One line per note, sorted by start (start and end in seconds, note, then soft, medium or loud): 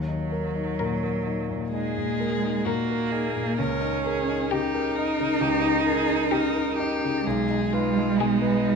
0.00 1.69 D#2 soft
0.00 1.68 F#3 medium
0.08 0.46 D#4 soft
0.32 0.70 A#4 soft
0.56 0.93 D#4 soft
0.79 1.18 A#2 soft
0.79 1.51 A#4 soft
1.03 1.40 A#4 soft
1.27 1.64 D#4 soft
1.49 1.87 A#2 soft
1.71 2.67 G#3 medium
1.71 2.10 D#4 soft
1.71 2.66 G#4 medium
1.97 2.33 A#2 soft
2.20 2.57 A#4 soft
2.42 2.79 D#4 soft
2.65 3.03 A#2 soft
2.65 3.60 A#3 medium
2.65 3.13 F#4 soft
2.65 3.36 A#4 soft
2.91 3.27 A#4 soft
3.11 3.49 D#4 soft
3.11 3.57 G#4 soft
3.36 3.58 A#2 soft
3.58 5.37 C#2 soft
3.58 4.52 C#4 medium
3.58 4.03 A#4 soft
3.81 4.18 D#4 soft
4.05 4.51 G#4 soft
4.05 4.42 A#4 soft
4.28 4.64 D#4 soft
4.50 4.88 C#3 soft
4.50 7.25 D#4 medium
4.50 4.97 G4 soft
4.50 5.19 G4 soft
4.74 5.10 A#4 soft
4.95 5.33 D#4 soft
4.95 5.42 A#4 soft
5.20 5.55 C#3 soft
5.40 7.21 C#2 soft
5.40 5.85 G4 medium
5.62 5.98 D#4 soft
5.86 6.29 G#4 medium
5.86 6.22 A#4 soft
6.08 6.45 D#4 soft
6.29 6.69 C#3 soft
6.29 7.02 G4 soft
6.29 6.76 A#4 medium
6.56 6.93 A#4 soft
6.77 7.17 D#4 soft
6.77 7.28 G4 medium
7.04 7.26 C#3 soft
7.25 8.76 B1 soft
7.25 8.76 G#3 medium
7.25 7.74 G#4 medium
7.50 7.87 D#4 soft
7.73 8.21 F4 medium
7.73 8.10 B4 soft
7.97 8.33 D#4 soft
8.19 8.56 B2 soft
8.19 8.76 D#4 soft
8.19 8.76 G#4 soft
8.42 8.76 B4 soft
8.65 8.76 D#4 soft